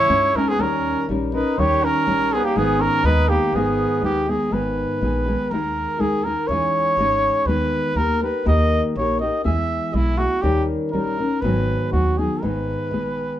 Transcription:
Already playing: E4 C#5
0.09 G2 G#3 C#4 D#4 G#4
0.34 E2 G#3 C#4 D#4 G#4 A#4
0.38 C#4
0.49 B3 G#4
0.59 D#2 D#3 G3 C#4 D#4 A#4
1.09 A#1 G3 C#4 D#4 A#4
1.33 C#4 D#4 A#4 B4
1.58 D#2 D#3 G3 C#4 D#4 G4 A#4 C#5
1.84 C#4 A#4
2.06 A#1 G3 C#4 D#4 A#4
2.33 B3 G#4
2.44 A#3 G4
2.56 G#1 G#2 D#3 G#3 B3 D#4 G#4
2.80 C#4 A#4
3.03 D#2 G#3 B3 D#4 G#4 B4
3.29 A#3 G4
3.52 G#1 G#2 D#3 G#3 B3 D#4 G#4
4.02 D#2 G#3 B3 D#4 G4 G#4
4.28 G#3 B3 D#4 G#4
4.51 G#1 G#2 D#3 G#3 B3 D#4 G#4 B4
5.02 A#1 G#3 B3 D#4 G#4
5.28 G#3 B3 D#4 G#4
5.51 D#2 D#3 G#3 D#4 G#4 A#4
5.99 D#2 G#3 D#4 G#4 A#4
6.25 D#4 G#4 A#4
6.47 E2 E3 G#3 C#4 D#4 G#4 C#5
6.97 G#1 G#3 C#4 D#4 G#4
7.45 D#2 D#3 G#3 B3 D#4 G#4 B4
7.95 D#2 A#3 D#4 G4 A#4
8.21 D#4 G4 A#4 B4
8.45 D#2 D#3 A#3 D#4 G4 A#4 D#5
8.96 A#1 A#3 D#4 G4 A#4 C#5
9.20 D#4 G4 A#4 D#5
9.44 E2 E3 G#3 B3 E4 G#4 E5
9.94 B1 G#3 B3 E4 G#4
10.18 B3 E4 F#4 G#4
10.42 D#2 D#3 G3 C#4 D#4 G4 A#4
10.92 A#1 G3 C#4 D#4 A#4
11.18 C#4 D#4 A#4
11.41 G#1 G#2 D#3 F#3 B3 D#4 G#4 B4
11.92 D#2 F#3 B3 D#4 F#4 G#4
12.18 F#3 B3 D#4 G#4
12.42 G#1 G#2 D#3 G#3 B3 D#4 G#4 B4
12.91 A#1 G#3 B3 D#4 G#4

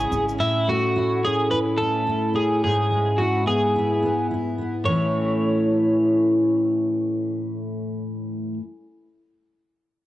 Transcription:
Already playing: C#3 G#3 C#4 E4 G#4
0.11 G#1 C#4, shaker
0.29 shaker
0.38 A2 E4
0.68 A3 F#4
0.96 E4
1.24 C#4 G#4
1.51 E4 B4
1.78 C#4 A4
2.07 E4
2.34 C#4 G#4
2.64 G#2 G#4
2.91 G#3
3.18 E4 F#4
3.46 B3 G#4
3.76 E4
4.03 B3
4.31 E4
4.58 B3
4.84 A2 E3 C#5
4.89 A3 C#4 E4

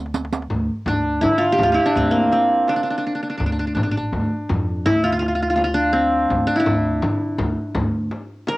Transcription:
Already playing: D2
0.06 darbuka ka
0.14 riq, darbuka tek
0.25 darbuka ka
0.33 riq, darbuka tek
0.42 darbuka ka
0.50 D2, frame drum, darbuka dum
0.69 darbuka ka
0.86 D2 D4, frame drum, darbuka dum
1.05 darbuka ka
1.21 D3 E4, frame drum, darbuka dum
1.38 F4
1.52 G4
1.59 D2, frame drum, darbuka dum
1.63 F4
1.72 E4 F4
1.78 darbuka ka
1.86 D4
1.96 D2 C4, darbuka dum, frame drum
2.11 A#3
2.32 C4, darbuka tek, frame drum
2.67 D4, darbuka tek, frame drum
2.76 D4
2.83 D4, darbuka ka
2.90 D4
2.98 D4
3.04 D4, darbuka ka
3.15 D4
3.23 D4
3.30 D4
3.37 D2 D4, frame drum, darbuka dum
3.46 D4
3.52 D4
3.59 D4, darbuka ka
3.67 D4
3.75 A1 D4, darbuka dum, frame drum
3.83 D4
3.91 D4, darbuka ka
3.97 D4
4.12 D2, frame drum, darbuka dum
4.49 F2, frame drum, darbuka dum
4.68 darbuka ka
4.86 D2 E4, frame drum, darbuka dum
5.04 F4
5.12 F4
5.19 F4, darbuka tek, frame drum
5.28 F4
5.35 F4
5.43 F4
5.50 F4
5.56 F4, darbuka tek, frame drum
5.64 F4
5.74 D4
5.93 C4
6.30 D2, frame drum, darbuka dum
6.47 D4
6.56 E4
6.60 D4
6.66 D2, frame drum, darbuka dum
6.85 darbuka ka
7.02 D3, frame drum, darbuka dum
7.38 D2, frame drum, darbuka dum
7.57 darbuka ka
7.75 D2, frame drum, darbuka dum
8.11 darbuka tek, frame drum
8.47 A#4, darbuka tek, frame drum

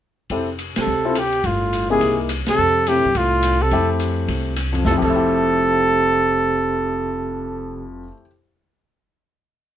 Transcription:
0.30 F1 C4 E4 G4 A4, kick, ride
0.59 hi-hat pedal, ride
0.76 C3, muted upright bass stroke, snare, ride
0.81 A4
0.87 D2
1.05 C4 E4 F4 A4
1.15 C3 G4, cross-stick, hi-hat pedal, ride
1.32 ride
1.44 G1 A2 F4, kick, ride
1.73 hi-hat pedal, ride
1.90 C3 A#3 D#4 E4 G#4
2.01 C2, kick, ride
2.29 cross-stick, hi-hat pedal, ride
2.46 C3 A4, muted upright bass stroke, snare, ride
2.58 F2
2.86 C3 A3 C4 E4 G4, hi-hat pedal, ride
3.05 F#2
3.15 C2 A2 F4, kick, ride
3.43 cross-stick, hi-hat pedal, ride
3.62 C3 A4
3.71 F2 A3 C4 E4 G4, kick, ride
4.00 hi-hat pedal, ride
4.28 C2, kick, ride
4.56 cross-stick, hi-hat pedal, ride
4.72 F2, ride
4.79 F3
4.84 F1 C3 A3 A4, kick, snare
4.91 F2 E4
4.97 F3 G4
5.02 F1 C3 A3 A4, kick, crash
5.10 E4
5.16 G4

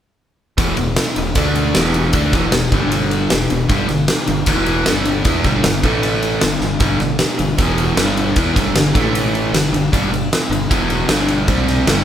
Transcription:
0.58 E1 E2 B2 E3, kick, ride
0.77 E1 E2 B2, ride
0.96 snare, ride
1.16 E1 E2 B2, ride
1.35 D2 D3 A3 D4, kick, ride
1.55 ride
1.75 E1 E2 B2 E3, snare, ride
1.84 snare
1.94 ride
2.13 D2 D3 A3 D4, kick, ride
2.33 E1 E2 B2 E3, kick, snare, ride
2.52 E1 E2 B2, snare, ride
2.72 G1 G2 D3 G3, kick, ride
2.92 ride
3.11 ride
3.30 E1 E2 B2, snare, ride
3.41 snare
3.50 E1 E2 B2, ride
3.69 G1 G2 D3 G3, kick, ride
3.88 G1 G2 D3, snare, ride
4.08 snare, ride
4.27 G1 G2 D3, ride
4.46 E1 E2 B2 E3, kick, ride
4.66 ride
4.85 G1 G2 D3 G3, snare, ride
4.96 snare
5.05 ride
5.24 E2 E3 B3 E4, kick, ride
5.44 G1 G2 D3 G3, kick, snare, ride
5.64 G1 G2 D3, snare, ride
5.83 A1 A2 E3 A3, kick, ride
6.03 ride
6.23 ride
6.41 G1 G2 D3, snare, ride
6.61 G1 G2 D3, snare
6.80 G1 G2 D3 G3, kick, ride
7.00 G1 G2 D3, snare, ride
7.19 snare, ride
7.39 G1 G2 D3, ride
7.58 E1 E2 B2 E3, kick, ride
7.78 ride
7.97 G1 G2 D3 G3, snare, ride
8.17 ride
8.36 E2 E3 B3 E4, kick, ride
8.56 G1 G2 D3 G3, kick, snare, ride
8.75 G1 G2 D3, snare, ride
8.94 A1 A2 E3 A3, kick, ride
9.15 ride
9.35 ride
9.53 G1 G2 D3, snare, ride
9.64 snare
9.72 G1 G2 D3, ride
9.92 G1 G2 D3 G3, kick, ride
10.10 G1 G2 D3, ride
10.33 snare, ride
10.49 G1 G2 D3, ride
10.70 E1 E2 B2 E3, kick, ride
10.90 ride
11.09 G1 G2 D3 G3, snare, ride
11.28 ride
11.47 C2 C3 G3 C4, kick, ride
11.68 snare, ride
11.86 G1 G2 D3 G3, snare, ride

